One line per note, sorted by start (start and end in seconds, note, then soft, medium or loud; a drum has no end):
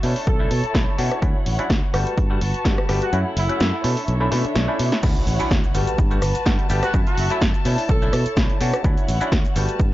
0.03 0.14 B2 loud
0.03 0.37 A3 medium
0.03 0.37 C#4 medium
0.03 0.37 D4 medium
0.03 0.37 E4 medium
0.03 1.92 E4 medium
0.03 1.92 C#5 medium
0.03 1.21 A5 medium
0.03 open hi-hat loud
0.16 open hi-hat medium
0.27 0.46 B1 medium
0.27 0.75 A4 medium
0.27 kick loud
0.27 closed hi-hat medium
0.39 0.51 A3 medium
0.39 0.51 C#4 medium
0.39 0.51 D4 medium
0.39 0.51 E4 loud
0.51 0.61 B2 medium
0.51 open hi-hat loud
0.64 muted fingered electric bass stroke soft
0.64 closed hi-hat medium
0.74 0.85 B1 loud
0.74 0.96 A3 loud
0.74 0.96 C#4 medium
0.74 0.96 D4 medium
0.74 0.96 E4 loud
0.74 kick loud
0.74 snare loud
0.74 closed hi-hat medium
0.98 1.09 B2 medium
0.98 1.20 A3 medium
0.98 1.20 C#4 medium
0.98 1.20 D4 medium
0.98 1.20 F#4 medium
0.98 open hi-hat loud
1.12 cross-stick medium
1.12 closed hi-hat soft
1.22 1.33 D2 loud
1.22 1.56 F#3 medium
1.22 1.56 C#4 medium
1.22 1.56 D4 medium
1.22 1.56 E4 medium
1.22 1.93 F#5 medium
1.22 kick loud
1.22 closed hi-hat medium
1.46 1.56 A1 medium
1.46 open hi-hat loud
1.59 1.70 F#3 medium
1.59 1.70 C#4 medium
1.59 1.70 D4 medium
1.59 1.70 E4 medium
1.59 closed hi-hat medium
1.70 1.80 D2 medium
1.70 kick loud
1.70 snare loud
1.70 closed hi-hat medium
1.94 2.04 G1 loud
1.94 2.27 G3 medium
1.94 2.27 A3 medium
1.94 2.28 B3 medium
1.94 3.12 F#4 medium
1.94 2.28 F#4 medium
1.94 3.12 B4 medium
1.94 3.12 A5 medium
1.94 cross-stick medium
1.94 open hi-hat loud
2.07 closed hi-hat medium
2.18 2.37 G2 medium
2.18 kick loud
2.18 closed hi-hat medium
2.30 2.41 G3 medium
2.30 2.41 A3 medium
2.30 2.42 B3 medium
2.30 2.42 F#4 loud
2.41 2.52 G1 medium
2.41 open hi-hat loud
2.54 muted fingered electric bass stroke soft
2.54 closed hi-hat medium
2.65 2.75 G2 loud
2.65 2.86 G3 loud
2.65 2.86 A3 medium
2.65 2.86 B3 medium
2.65 2.87 F#4 loud
2.65 kick loud
2.65 snare loud
2.65 closed hi-hat medium
2.78 cross-stick medium
2.89 2.99 G1 medium
2.89 3.10 G3 medium
2.89 3.10 A3 medium
2.89 3.10 B3 medium
2.89 3.10 G4 medium
2.89 cross-stick medium
2.89 open hi-hat loud
3.01 3.18 F#4 medium
3.01 closed hi-hat medium
3.13 3.23 F#2 loud
3.13 3.46 F#3 medium
3.13 3.46 A3 medium
3.13 3.47 C#4 medium
3.13 3.84 E4 medium
3.13 3.47 E4 medium
3.13 5.02 A4 medium
3.13 3.84 F#5 medium
3.13 closed hi-hat medium
3.36 3.47 F#1 medium
3.36 3.89 E4 medium
3.36 open hi-hat loud
3.49 3.60 F#3 medium
3.49 3.61 A3 medium
3.49 3.61 C#4 medium
3.49 3.61 E4 medium
3.49 muted fingered electric bass stroke soft
3.49 closed hi-hat medium
3.60 3.71 F#2 medium
3.60 snare loud
3.60 closed hi-hat medium
3.84 3.94 B2 loud
3.84 5.02 D3 medium
3.84 4.18 A3 medium
3.84 4.18 C#4 medium
3.84 4.18 D4 medium
3.84 4.18 E4 medium
3.84 5.02 C#5 medium
3.84 5.02 E5 medium
3.84 open hi-hat loud
3.97 open hi-hat medium
4.08 4.27 B1 medium
4.08 closed hi-hat medium
4.08 swell medium
4.20 4.29 A3 medium
4.20 4.30 C#4 medium
4.20 4.30 D4 medium
4.20 4.30 E4 loud
4.31 4.42 B2 medium
4.31 4.45 A3 medium
4.31 4.45 C#4 medium
4.31 4.45 D4 medium
4.31 4.45 E4 loud
4.31 snare soft
4.31 open hi-hat loud
4.45 muted fingered electric bass stroke soft
4.45 closed hi-hat medium
4.55 4.66 B1 loud
4.55 snare loud
4.55 closed hi-hat medium
4.68 5.00 A3 medium
4.68 5.01 C#4 medium
4.68 5.01 D4 medium
4.68 5.01 E4 loud
4.79 4.90 B2 medium
4.79 open hi-hat loud
4.92 snare medium
5.03 5.13 D2 loud
5.03 5.37 F#3 medium
5.03 5.37 C#4 medium
5.03 5.37 D4 medium
5.03 5.37 E4 medium
5.03 5.74 E4 medium
5.03 5.74 C#5 medium
5.03 5.74 F#5 medium
5.03 kick loud
5.03 crash loud
5.03 impact medium
5.03 shaker soft
5.16 closed hi-hat medium
5.16 shaker soft
5.27 5.37 A1 medium
5.27 open hi-hat loud
5.27 shaker medium
5.39 5.51 F#3 medium
5.39 5.51 C#4 medium
5.39 5.51 D4 medium
5.39 5.51 E4 medium
5.39 muted fingered electric bass stroke soft
5.39 closed hi-hat medium
5.39 shaker soft
5.51 5.61 D2 medium
5.51 kick loud
5.51 snare loud
5.51 shaker soft
5.64 closed hi-hat soft
5.64 shaker soft
5.74 5.85 G1 loud
5.74 6.08 G3 medium
5.74 6.08 A3 medium
5.74 6.08 B3 medium
5.74 6.93 F#4 medium
5.74 6.09 F#4 medium
5.74 6.93 B4 medium
5.74 8.81 A5 medium
5.74 open hi-hat loud
5.74 shaker medium
5.87 closed hi-hat medium
5.87 shaker soft
5.98 6.18 G2 medium
5.98 kick loud
5.98 shaker soft
6.11 6.22 G3 medium
6.11 6.22 A3 medium
6.11 6.22 B3 medium
6.11 6.23 F#4 loud
6.11 closed hi-hat soft
6.11 shaker soft
6.22 6.32 G1 medium
6.22 cross-stick medium
6.22 open hi-hat loud
6.22 shaker medium
6.35 closed hi-hat medium
6.35 shaker soft
6.46 6.56 G2 loud
6.46 6.67 G3 loud
6.46 6.67 A3 medium
6.46 6.67 B3 medium
6.46 6.67 F#4 loud
6.46 kick loud
6.46 snare loud
6.46 shaker soft
6.59 closed hi-hat medium
6.69 6.80 G1 medium
6.69 6.91 G3 medium
6.69 6.91 A3 medium
6.69 6.91 B3 medium
6.69 6.91 G4 loud
6.69 open hi-hat loud
6.69 shaker medium
6.83 6.99 F#4 medium
6.83 cross-stick medium
6.83 closed hi-hat medium
6.83 shaker soft
6.93 7.04 F#2 loud
6.93 7.27 F#3 medium
6.93 7.27 A3 medium
6.93 7.27 C#4 medium
6.93 7.28 E4 medium
6.93 7.65 F#4 medium
6.93 7.65 E5 medium
6.93 kick loud
6.93 shaker soft
7.06 7.27 F#4 medium
7.06 closed hi-hat medium
7.06 shaker soft
7.17 7.28 F#1 medium
7.17 open hi-hat loud
7.17 shaker medium
7.30 7.42 F#3 medium
7.30 7.42 A3 medium
7.30 7.42 C#4 medium
7.30 7.42 E4 loud
7.30 closed hi-hat medium
7.30 shaker soft
7.41 7.52 F#2 loud
7.41 kick loud
7.41 snare loud
7.41 shaker soft
7.54 closed hi-hat soft
7.54 shaker soft
7.65 7.75 B2 loud
7.65 7.99 A3 medium
7.65 7.99 C#4 medium
7.65 7.99 D4 medium
7.65 8.83 E4 medium
7.65 7.99 E4 medium
7.65 8.83 C#5 medium
7.65 open hi-hat loud
7.65 shaker medium
7.78 open hi-hat medium
7.78 shaker soft
7.89 8.08 B1 medium
7.89 8.37 A4 loud
7.89 kick loud
7.89 shaker soft
8.02 8.13 A3 medium
8.02 8.13 C#4 medium
8.02 8.13 D4 medium
8.02 8.13 E4 loud
8.02 closed hi-hat soft
8.02 shaker soft
8.13 8.23 B2 loud
8.13 cross-stick medium
8.13 open hi-hat loud
8.13 shaker medium
8.26 muted fingered electric bass stroke soft
8.26 closed hi-hat medium
8.26 shaker soft
8.37 8.47 B1 loud
8.37 8.58 A3 loud
8.37 8.58 C#4 medium
8.37 8.58 D4 medium
8.37 8.58 E4 loud
8.37 kick loud
8.37 snare loud
8.37 shaker soft
8.50 closed hi-hat medium
8.60 8.71 B2 medium
8.60 8.82 A3 medium
8.60 8.82 C#4 medium
8.60 8.82 D4 medium
8.60 8.82 F#4 loud
8.60 open hi-hat loud
8.60 shaker medium
8.74 cross-stick medium
8.74 closed hi-hat medium
8.74 shaker soft
8.84 8.94 D2 loud
8.84 9.18 F#3 medium
8.84 9.18 C#4 medium
8.84 9.18 D4 medium
8.84 9.55 E4 medium
8.84 9.18 E4 medium
8.84 9.55 C#5 medium
8.84 9.55 F#5 medium
8.84 kick loud
8.84 shaker soft
8.97 closed hi-hat medium
8.97 shaker soft
9.08 9.18 A1 medium
9.08 open hi-hat loud
9.08 shaker medium
9.21 9.32 F#3 medium
9.21 9.32 C#4 medium
9.21 9.32 D4 medium
9.21 9.32 E4 medium
9.21 muted fingered electric bass stroke soft
9.21 closed hi-hat medium
9.21 shaker soft
9.32 9.42 D2 loud
9.32 kick loud
9.32 snare loud
9.32 shaker soft
9.45 closed hi-hat soft
9.45 shaker soft
9.56 9.66 G1 loud
9.56 9.89 G3 medium
9.56 9.89 A3 medium
9.56 9.89 B3 medium
9.56 9.94 F#4 medium
9.56 9.90 F#4 medium
9.56 9.94 B4 medium
9.56 9.94 A5 medium
9.56 open hi-hat loud
9.56 shaker medium
9.69 closed hi-hat medium
9.69 shaker soft
9.80 9.94 G2 medium
9.80 kick loud
9.80 shaker soft